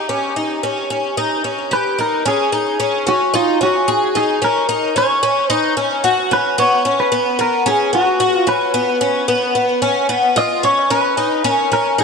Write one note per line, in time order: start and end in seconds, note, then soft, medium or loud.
0.00 1.68 G4 medium
0.09 0.36 C#4 medium
0.36 0.63 D#4 medium
0.63 0.89 C#4 medium
0.90 1.17 C#4 medium
1.17 1.44 D#4 medium
1.44 1.71 C#4 medium
1.71 1.98 G4 medium
1.71 2.00 B4 medium
1.99 2.25 D#4 medium
1.99 2.27 A#4 medium
2.25 2.52 C#4 medium
2.25 3.10 G#4 medium
2.52 2.79 D#4 medium
2.80 3.05 C#4 medium
3.07 3.33 C#4 medium
3.07 3.33 F#4 medium
3.34 3.60 D#4 medium
3.34 3.62 F4 loud
3.61 3.88 C#4 medium
3.61 4.17 F#4 medium
3.88 4.15 G#4 medium
4.15 4.41 D#4 medium
4.15 4.44 G#4 medium
4.42 4.68 C#4 medium
4.42 4.97 A#4 loud
4.69 4.96 D#4 medium
4.96 5.22 C#4 medium
4.96 5.53 C#5 loud
5.23 5.49 C#4 medium
5.50 5.76 D#4 medium
5.50 5.74 B4 loud
5.77 6.04 C#4 medium
6.04 6.31 F#4 medium
6.31 6.58 C#4 medium
6.31 6.59 B4 loud
6.58 6.85 B3 medium
6.58 7.00 C#5 loud
6.85 7.11 C#4 medium
7.00 7.37 B4 loud
7.12 7.38 B3 medium
7.39 7.65 B3 medium
7.39 7.68 A#4 medium
7.66 7.92 C#4 medium
7.66 7.95 G#4 loud
7.93 8.20 B3 medium
7.93 8.35 F#4 medium
8.20 8.47 F#4 medium
8.35 8.50 F4 medium
8.47 8.74 C#4 medium
8.47 9.52 B4 medium
8.74 9.00 B3 medium
9.01 9.28 C#4 medium
9.28 9.54 B3 medium
9.55 9.81 B3 medium
9.82 10.09 C#4 medium
10.09 10.36 B3 medium
10.36 10.63 F4 medium
10.36 10.64 D#5 loud
10.63 10.89 C#4 medium
10.63 10.91 C#5 loud
10.90 11.17 C#4 medium
10.90 11.48 B4 loud
11.17 11.44 D#4 medium
11.44 11.70 C#4 medium
11.44 11.73 A#4 loud
11.72 11.98 C#4 medium
11.72 12.00 A#4 medium
11.98 12.04 D#4 medium
11.98 12.04 G#4 loud